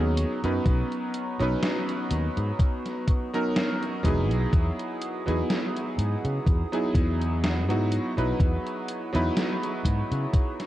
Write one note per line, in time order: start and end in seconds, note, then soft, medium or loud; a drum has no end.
0.00 0.23 D#2 medium
0.00 0.37 F#3 medium
0.00 0.38 B3 medium
0.00 4.01 B3 medium
0.00 0.38 C#4 medium
0.00 0.38 D#4 medium
0.00 0.38 G#4 medium
0.00 4.00 A#5 medium
0.00 4.01 C#6 medium
0.00 4.01 D#6 medium
0.17 closed hi-hat medium
0.43 0.57 F#2 medium
0.43 1.34 F#3 medium
0.43 1.34 B3 medium
0.43 1.34 C#4 medium
0.43 1.35 D#4 medium
0.43 1.35 B4 medium
0.43 closed hi-hat soft
0.66 0.82 B1 loud
0.66 kick loud
0.66 closed hi-hat medium
0.92 closed hi-hat soft
1.14 closed hi-hat medium
1.39 1.54 B1 medium
1.39 3.27 F#3 loud
1.39 3.28 B3 medium
1.39 3.28 C#4 medium
1.39 3.28 D#4 medium
1.39 3.29 B4 loud
1.39 closed hi-hat soft
1.63 snare loud
1.63 closed hi-hat medium
1.89 closed hi-hat soft
2.11 2.27 D#2 medium
2.11 closed hi-hat medium
2.37 2.51 G#2 medium
2.37 closed hi-hat soft
2.59 kick loud
2.59 closed hi-hat medium
2.86 snare soft
2.86 closed hi-hat soft
3.08 kick loud
3.08 closed hi-hat medium
3.34 3.99 F#3 medium
3.34 3.99 B3 medium
3.34 3.99 C#4 medium
3.34 4.00 D#4 medium
3.34 4.00 A#4 loud
3.34 closed hi-hat soft
3.56 snare loud
3.56 closed hi-hat medium
3.83 closed hi-hat soft
4.03 4.31 E1 medium
4.03 5.21 F#3 medium
4.03 5.21 B3 medium
4.03 5.21 D#4 medium
4.03 5.22 E4 medium
4.03 10.66 G#4 medium
4.03 5.22 G#4 loud
4.03 10.66 F#5 medium
4.03 7.88 D#6 medium
4.03 kick medium
4.03 closed hi-hat medium
4.31 4.44 B1 medium
4.31 closed hi-hat soft
4.53 4.69 E2 loud
4.53 kick loud
4.53 closed hi-hat medium
4.79 closed hi-hat soft
5.02 closed hi-hat medium
5.26 5.41 E2 medium
5.26 6.66 F#3 medium
5.26 6.66 B3 medium
5.26 6.66 D#4 medium
5.26 6.67 E4 medium
5.26 6.67 G#4 medium
5.26 closed hi-hat soft
5.50 snare loud
5.50 closed hi-hat medium
5.77 closed hi-hat soft
5.98 6.14 G#2 medium
5.98 closed hi-hat medium
6.25 6.38 C#3 medium
6.25 closed hi-hat soft
6.46 6.62 E2 medium
6.46 kick loud
6.46 closed hi-hat medium
6.72 7.63 F#3 medium
6.72 7.63 B3 medium
6.72 7.63 D#4 medium
6.72 7.63 E4 medium
6.72 7.64 G#4 medium
6.72 closed hi-hat soft
6.95 7.69 E2 loud
6.95 kick loud
6.95 closed hi-hat medium
7.22 closed hi-hat soft
7.44 snare loud
7.44 closed hi-hat medium
7.69 7.97 G#2 loud
7.69 8.11 F#3 medium
7.69 8.11 B3 medium
7.69 8.12 D#4 medium
7.69 8.12 E4 medium
7.69 8.12 F#4 medium
7.69 closed hi-hat soft
7.92 10.66 C#6 medium
7.92 closed hi-hat medium
8.17 8.31 B1 medium
8.17 9.08 F#3 medium
8.17 9.08 B3 medium
8.17 9.08 D#4 medium
8.17 9.09 E4 medium
8.17 9.09 B4 medium
8.17 closed hi-hat soft
8.40 8.56 E2 loud
8.40 kick loud
8.40 closed hi-hat medium
8.67 closed hi-hat soft
8.88 closed hi-hat loud
9.13 9.28 E2 medium
9.13 10.66 F#3 loud
9.13 10.66 B3 medium
9.13 10.66 D#4 medium
9.13 10.66 E4 medium
9.13 10.66 B4 loud
9.13 closed hi-hat soft
9.37 snare loud
9.37 closed hi-hat medium
9.63 closed hi-hat soft
9.85 10.01 G#2 medium
9.85 kick medium
9.85 closed hi-hat medium
10.12 10.25 C#3 medium
10.12 closed hi-hat soft
10.33 kick loud
10.33 closed hi-hat medium
10.60 snare soft
10.60 closed hi-hat soft